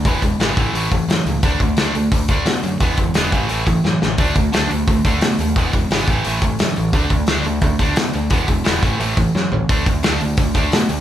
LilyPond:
<<
  \new Staff \with { instrumentName = "Distorted electric guitar" } { \clef bass \time 4/4 \key d \lydian \tempo 4 = 174 <e gis b>8 <e gis>8 <e gis b>8 <a, e a>8 <a, e a>8 <a, e>8 <a, e>8 <a, e>8 | <d a d'>8 <d a>8 <d a d'>8 <d a>8 <d a>8 <d a d'>8 <d a>8 <d a>8 | <e gis b>8 <e gis>8 <e gis b>8 <a, e a>8 <a, e a>8 <a, e>8 <a, e>8 <a, e>8 | <d a d'>8 <d a>8 <d a d'>8 <d a>8 <d a>8 <d a d'>8 <d a>8 <d a>8 |
<e gis b>8 <e gis>8 <e gis b>8 <a, e a>8 <a, e a>8 <a, e>8 <a, e>8 <a, e>8 | <d a d'>8 <d a>8 <d a d'>8 <d a>8 <d a>8 <d a d'>8 <d a>8 <d a>8 | <e gis b>8 <e gis>8 <e gis b>8 <a, e a>8 <a, e a>8 <a, e>8 <a, e>8 <a, e>8 | <d a d'>8 <d a>8 <d a d'>8 <d a>8 <d a>8 <d a d'>8 <d a>8 <d a>8 | }
  \new Staff \with { instrumentName = "Picked electric bass" } { \clef bass \time 4/4 \key d \lydian e,,8 e,,8 gis,,8 a,,8 a,,8 a,,8 fis,8 cis,8 | d,8 d,8 d,8 d,8 d,8 d,8 b,8 fis,8 | e,,8 e,,8 e,,8 a,,8 a,,8 a,,8 fis,8 a,,8 | d,8 d,8 d,8 d,8 d,8 d,8 b,8 dis,8 |
e,,8 e,,8 gis,,8 a,,8 a,,8 a,,8 fis,8 a,,8 | d,8 d,8 d,8 d,8 d,8 d,8 b,8 d,8 | e,,8 e,,8 e,,8 a,,8 a,,8 a,,8 fis,8 a,,8 | d,8 d,8 d,8 d,8 d,8 d,8 b,8 d,8 | }
  \new DrumStaff \with { instrumentName = "Drums" } \drummode { \time 4/4 <hho bd>8 <hho bd>8 <hho sn>8 <hho bd>8 hho8 <hho bd>8 <hho sn>8 hho8 | <hho bd>8 <hho bd>8 <hho sn>8 hho8 <hho bd>8 <hho bd>8 <hho sn>8 hho8 | <hho bd>8 <hho bd>8 <hho sn>8 <hho bd>8 hho8 <hho bd>8 sn8 sn8 | <hho bd>8 <hho bd>8 <hho sn>8 hho8 <hho bd>8 <hho bd>8 <hho sn>8 hho8 |
<hho bd>8 <hho bd>8 <hho sn>8 <hho bd>8 hho8 <hho bd>8 <hho sn>8 hho8 | <hho bd>8 <hho bd>8 <hho sn>8 hho8 <hho bd>8 <hho bd>8 <hho sn>8 hho8 | <hho bd>8 <hho bd>8 <hho sn>8 <hho bd>8 hho8 <hho bd>8 sn8 tomfh8 | <hho bd>8 <hho bd>8 <hho sn>8 hho8 <hho bd>8 <hho bd>8 <hho sn>8 hho8 | }
>>